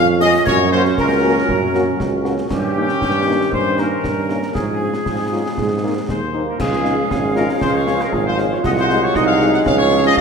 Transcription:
Already playing: tuba F2, trombone section F3 C#4
0.19 french horn section G#3 C#4 G#4, trumpet section D#5, woodwind section D#5, snare
0.34 snare
0.46 tuba F#2, trombone section F#3 C#4, woodwind section C#5, trumpet section C#5, concert bass drum, snare
0.71 french horn section A#3 C#4 F#4, woodwind section C5, trumpet section C5
0.85 snare
0.97 tuba C#2, woodwind section A#4, trumpet section A#4, concert bass drum, snare
1.24 french horn section A#3 C#4 F#4
1.49 tuba F#2, concert bass drum
1.74 french horn section A#3 C#4 F#4, snare
2.00 tuba C#2, concert bass drum, snare
2.25 french horn section A#3 C#4 F#4, snare
2.38 snare
2.50 tuba G2, trombone section D#3 C#4, trumpet section G4, woodwind section G4, concert bass drum, snare, crash
2.76 french horn section A#3 C#4 D#4
2.89 snare
3.02 tuba G2, concert bass drum, snare
3.27 french horn section A#3 C#4 D#4
3.52 tuba G2, woodwind section C5, trumpet section C5, concert bass drum
3.78 french horn section A#3 C#4 D#4, woodwind section A#4, trumpet section A#4, snare
4.04 tuba G2, concert bass drum, snare
4.29 french horn section A#3 C#4 D#4, snare
4.43 snare
4.54 tuba G#2, trombone section F3 C#4, trumpet section G#4, woodwind section G#4, concert bass drum, snare
4.81 french horn section G#3 C#4 F4
4.94 snare
5.06 tuba G#2, trombone section F3, concert bass drum, snare
5.32 trombone section F#3, french horn section G#3 C#4 F4
5.58 tuba G#2, trombone section G#3, concert bass drum, snare
5.82 french horn section G#3 C4 D#4, trombone section A#3
6.08 tuba D#2, trombone section G#3, trumpet section C5, concert bass drum, snare
6.34 french horn section G#3 C4 D#4, trombone section A#3
6.48 trumpet section A#4
6.59 tuba C#2, trombone section F3 G#3, euphonium F4, woodwind section G#4 F5, trumpet section G#4, concert bass drum, snare, crash
6.72 snare
6.84 french horn section G#3 C#4 F4, euphonium D#4, snare
7.10 tuba G#1, euphonium C#4, concert bass drum, snare
7.35 french horn section G#3 C#4 F4, trumpet section A#4, snare
7.49 snare
7.61 tuba C#2, trumpet section C5, concert bass drum, snare
7.74 trumpet section C#5
7.87 french horn section G#3 C#4 F4, snare
8.00 trumpet section A#4, snare
8.12 tuba G#1, euphonium F4, trumpet section G#4, concert bass drum
8.26 trumpet section C5
8.38 french horn section G#3 C#4 F4, snare
8.52 trumpet section C#5
8.63 tuba C2, trombone section F#3 G#3, woodwind section G#4 F#5, trumpet section D#5, concert bass drum, snare, crash
8.77 trumpet section C5, snare
8.90 french horn section G#3 D#4 F#4, snare
9.03 trumpet section C#5
9.15 tuba C2, euphonium D#4, trumpet section D#5, concert bass drum, snare
9.26 trumpet section F5
9.41 french horn section G#3 D#4 F#4, snare
9.54 trumpet section F#5, snare
9.66 tuba C#2, trombone section F3, euphonium C#4, trumpet section F5, woodwind section F5, concert bass drum, snare
9.79 trumpet section C#5
9.91 french horn section G#3 C#4 F4, snare
10.04 trumpet section D#5, snare
10.17 euphonium F4, trumpet section D#5, concert bass drum

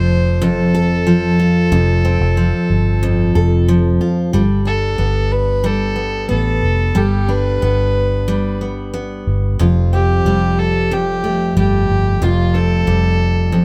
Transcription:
Already playing: fingered electric bass F1, steel-string acoustic guitar F2 F3 C4 A4, fiddle C5
0.42 steel-string acoustic guitar F2, fiddle A4
0.75 steel-string acoustic guitar A4
1.07 steel-string acoustic guitar F3
1.39 steel-string acoustic guitar F4
1.72 fingered electric bass F1, steel-string acoustic guitar F2
2.05 steel-string acoustic guitar C4
2.21 fingered electric bass F1
2.37 steel-string acoustic guitar F3
2.70 fingered electric bass G1
3.03 steel-string acoustic guitar F2
3.35 fingered electric bass F1, steel-string acoustic guitar A4
3.68 steel-string acoustic guitar F3
4.01 steel-string acoustic guitar F4
4.33 fingered electric bass G1, steel-string acoustic guitar G3 A4
4.65 steel-string acoustic guitar D4, fiddle A4
4.98 fingered electric bass G1, steel-string acoustic guitar B3
5.32 fiddle B4
5.64 steel-string acoustic guitar G3, fiddle A4
5.96 steel-string acoustic guitar B3
6.29 fingered electric bass A1, steel-string acoustic guitar B3, fiddle A4
6.63 fingered electric bass F1
6.95 fingered electric bass G1, steel-string acoustic guitar G3 A4, fiddle G4
7.28 steel-string acoustic guitar D4, fiddle B4
7.62 fingered electric bass G1, steel-string acoustic guitar B3
8.28 steel-string acoustic guitar G3
8.61 steel-string acoustic guitar B3
8.94 steel-string acoustic guitar B3
9.27 fingered electric bass G1
9.59 fingered electric bass F1, steel-string acoustic guitar F2 F4
9.93 steel-string acoustic guitar C4, fiddle G4
10.25 fingered electric bass F1, steel-string acoustic guitar G3
10.59 fiddle A4
10.91 steel-string acoustic guitar F2, fiddle G4
11.24 steel-string acoustic guitar A3
11.57 fingered electric bass G1, steel-string acoustic guitar G3, fiddle G4
11.89 fingered electric bass G1
12.22 fingered electric bass F1, steel-string acoustic guitar F2 F4, fiddle F4
12.54 steel-string acoustic guitar C4, fiddle A4
12.87 fingered electric bass F1, steel-string acoustic guitar G3
13.52 steel-string acoustic guitar F2

